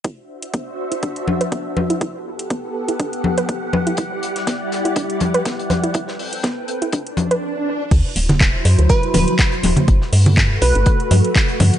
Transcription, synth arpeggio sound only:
X:1
M:4/4
L:1/16
Q:"Swing 16ths" 1/4=122
K:Dmix
V:1 name="Synth arpeggio sound"
E z3 B, z2 E D z2 B B, z B E | E z3 B, z2 E D z2 B B, z B E | E z3 B, z2 E D z2 B B, z B E | E z3 B, z2 E D z2 B z4 |
z16 | z16 |]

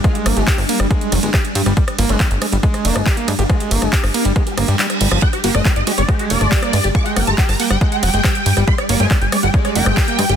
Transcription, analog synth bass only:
X:1
M:4/4
L:1/16
Q:1/4=139
K:Gphr
V:1 name="Analog synth bass" clef=bass
z2 G,,, G,,, z G,,, z G,,, z2 F,,, G,,, z2 G,, G,,, | z2 G,,, G,,, z G,,, z G,,, z2 F,,, G,,, z2 G,, G,,, | z2 G,,, G,,, z G,,, z G,,, z2 G,,, G,, z2 G,,, G,,, | z2 G,,, G,,, z G,,, z G,,, z2 F,,, G,,, z2 G,, G,,, |
z2 G,,, G,,, z G,,, z G,,, z2 F,,, G,,, z2 G,, G,,, | z2 G,,, G,,, z G,,, z G,,, z2 F,,, G,,, z2 G,, G,,, |]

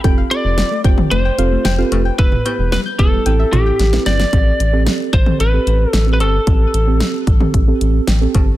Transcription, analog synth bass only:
X:1
M:4/4
L:1/16
Q:1/4=112
K:Am
V:1 name="Analog synth bass" clef=bass
F,,,2 z F,,,2 z F,,,2 F,,,2 F,,,2 F,,,2 F,,,2 | E,,,2 z E,,,2 z E,,,2 A,,,2 A,,,2 A,,,2 G,,,2 | A,,,2 A,,,3 z A,,,2 A,,,2 A,,,2 A,,,2 G,,,2 | A,,,2 A,,,3 z A,,,2 A,,,2 A,,,2 A,,,2 G,,,2 |]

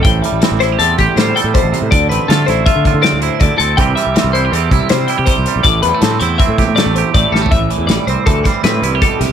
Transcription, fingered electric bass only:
X:1
M:5/4
L:1/16
Q:1/4=160
K:Am
V:1 name="Fingered electric bass" clef=bass
A,,,2 z A,,, z A,,,3 E,,2 A,,, z A,,2 z A,, z A,,, z A,, | D,,2 A,,, z D,2 A,,,2 z D,2 D,2 D,,2 z D,, z D,,2 | C,,2 z C,, z C,,3 E,,2 C,, z C,2 z C, z C,, z B,,, | A,,,2 E,, z A,,2 E,,2 z A,,2 A,,2 A,,,2 z A,,, z A,,,2 |
A,,, A,,, z E,, A,,, z C,, z D,,2 z2 A,,2 C,,2 z2 C,, z |]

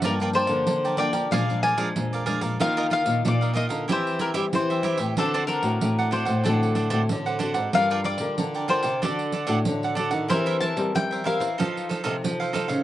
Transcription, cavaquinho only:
X:1
M:4/4
L:1/16
Q:1/4=93
K:Gm
V:1 name="Cavaquinho"
[FBdg] [FBdg] [FBdg]3 [Bdg] [FBdg] [Bdg] [_ABdf]2 [ABdf] [ABdf] z [Bdf] [ABdf] [Bdf] | [FBef] [FBef] [FBef]3 [Bef] [FBef] [Bef] [=EGc=e]2 [EGce] [EGce] z [Gce] [EGce] [Gce] | [Dcd^f] [Dcdf] [Dcdf]3 [cdf] [Dcdf] [cdf] [Dcdf]2 [Dcdf] [Dcdf] z [cdf] [Dcdf] [cdf] | [FBdg] [FBdg] [FBdg]3 [Bdg] [FBdg] [Bdg] [DAd^f]2 [DAdf] [DAdf] z [Adf] [DAdf] [Adf] |
[=EBc=e] [EBce] [EBce]3 [Bce] [EBce] [Bce] [_EAcf]2 [EAcf] [EAcf] z [Acf] [EAcf] [Acf] |]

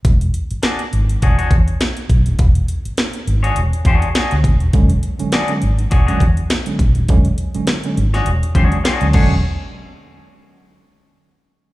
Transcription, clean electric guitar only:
X:1
M:4/4
L:1/16
Q:"Swing 16ths" 1/4=102
K:Emix
V:1 name="Clean electric guitar"
z4 [DFGd] z3 [DFGc] [DFGc] z6 | z6 z [DFGc] z2 [DFGc] z [DFGc] z3 | z4 [DFGd] z3 [DFGc] [DFGc] z6 | z6 z [DFGc] z2 [DFGc] z [DFGc] z [DFGc] z |
z16 |]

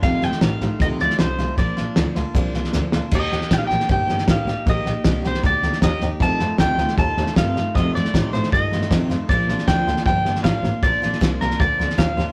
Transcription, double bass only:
X:1
M:4/4
L:1/8
Q:1/4=156
K:Bb
V:1 name="Double bass" clef=bass
F,,, F,,, A,,, A,,, D,, D,, C,, C,, | B,,, B,,, D,, D,, C,, C,, D,, D,, | E,, E,, B,,, B,,, G,,, G,,, A,,, A,,, | B,,, B,,, C,, C,, D,, D,, E,, E,, |
F,, F,, D,, D,, E,, E,, G,, G,, | F,, F,, A,, A,, G,, G,, F,, F,, | B,,, B,,, D,, D,, G,,, G,,, A,,, A,,, | B,,, B,,, C,, C,, D,, D,, E,, E,, |]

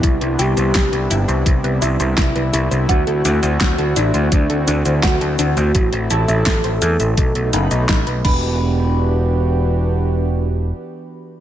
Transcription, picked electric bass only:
X:1
M:4/4
L:1/16
Q:1/4=84
K:Em
V:1 name="Picked electric bass" clef=bass
z C,, C,, C,, C,, C,, G,,, C,, C,, C,, C,, C,, C,, C,, C,, C,, | D,, D,, D,, D,, D,, D,, A,,, D,, D,, D,, D,, D,, z D,, D,, D,, | z A,,, A,,, A,,, z A,,, E,, A,,, B,,, B,,, F,,, B,,, z B,,, E,,,2- | E,,,12 z4 |]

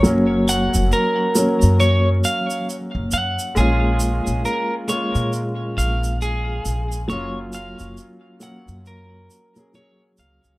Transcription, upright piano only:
X:1
M:4/4
L:1/16
Q:"Swing 16ths" 1/4=68
K:Gblyd
V:1 name="Upright piano"
[G,B,D]6 [G,B,D]8- [G,B,D]2 | [A,B,DF]6 [A,B,DF]8- [A,B,DF]2 | [G,B,DF]6 [G,B,D]4- [G,B,D] [G,B,DA] [G,B,DA]4 |]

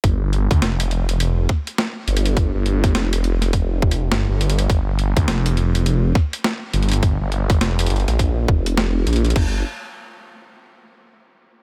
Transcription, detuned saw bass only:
X:1
M:4/4
L:1/16
Q:"Swing 16ths" 1/4=103
K:Gm
V:1 name="Detuned saw bass" clef=bass
G,,,3 D,, F,,,6 z4 G,,,2- | G,,, G,,,3 F,,,6 F,,,2 G,,, G,,,3 | G,,,3 D,, F,,,6 z4 G,,,2- | G,,, G,,,3 F,,,2 G,,, B,,,3 F,,,4 B,,,2 |
G,,,2 z12 z2 |]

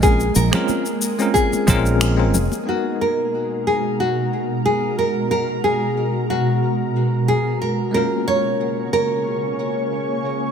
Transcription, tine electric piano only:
X:1
M:4/4
L:1/16
Q:"Swing 16ths" 1/4=91
K:G#dor
V:1 name="Tine electric piano"
[G,^B,CEA] z2 [G,B,CEA]2 z2 [G,B,CEA]3 [G,B,CEA]3 [G,B,CEA] z2 | [G,B,DFA]16- | [G,B,DFA]16 | [G,A,CEA]16 |]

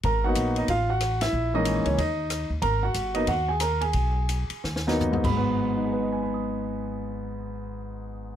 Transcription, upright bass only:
X:1
M:4/4
L:1/8
Q:"Swing" 1/4=177
K:G#m
V:1 name="Upright bass" clef=bass
G,,,2 A,,,2 =A,,,4 | A,,,3 C,, D,,3 D,, | G,,,2 =G,,,2 D,,4 | B,,,3 z D,,3 G,,,- |
G,,,8- | G,,,8 |]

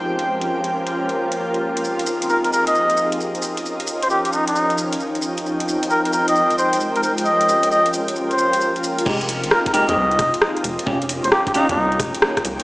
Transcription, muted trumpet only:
X:1
M:4/4
L:1/16
Q:"Swing 16ths" 1/4=133
K:Fm
V:1 name="Muted trumpet"
z16 | z4 B B B e4 z4 z | z3 c G G E E3 z6 | z4 B B B e3 c2 z B B z |
e4 e2 z3 c4 z3 | z4 B B B e4 z4 z | z3 c G G E E3 z6 |]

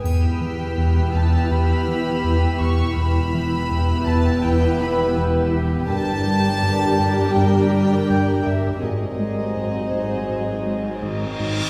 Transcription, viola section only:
X:1
M:4/4
L:1/8
Q:1/4=82
K:E
V:1 name="Viola section"
[B,E]8 | [B,E]8 | [=G,=D]8 | [F,^B,]6- [F,B,] z |]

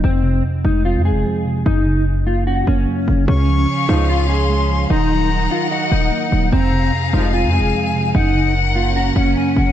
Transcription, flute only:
X:1
M:4/4
L:1/8
Q:1/4=148
K:Fphr
V:1 name="Flute"
z8 | z8 | d'4 c'4 | b4 g4 |
b4 a4 | g4 b g a g |]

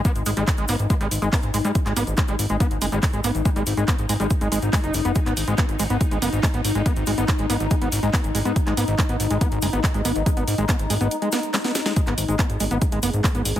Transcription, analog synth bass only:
X:1
M:4/4
L:1/16
Q:1/4=141
K:G#m
V:1 name="Analog synth bass" clef=bass
z G,,, G,,, G,,, z G,,, G,,, G,,, z G,,, G,,, G,,, z G,,, G,,, G,, | z G,,, G,,, G,,, z G,,, G,,, G,,, z G,,, F,,, G,,, z G,,, G,,, G,,, | z G,,, G,,, G,,, z G,,, G,,, G,,, z G,,, G,,, G,,, z F,,, F,,, F,,, | z G,,, G,,, G,,, z G,,, G,,, G,,, z G,,, F,,, G,,, z G,,, G,,, G,,, |
z G,,, G,,, G,,, z G,,, G,,, G,,, z G,,, G,,, G,,, z G,,, G,,, G,, | z G,,, G,,, G,,, z G,,, G,,, G,,, z G,,, F,,, G,,, z G,,, G,,, G,,, | z G,,, G,,, G,,, z G,,, G,,, G,,, z8 | z G,,, G,,, G,,, z G,,, G,,, G,,, z G,,, F,,, G,,, z G,,, G,,, G,,, |]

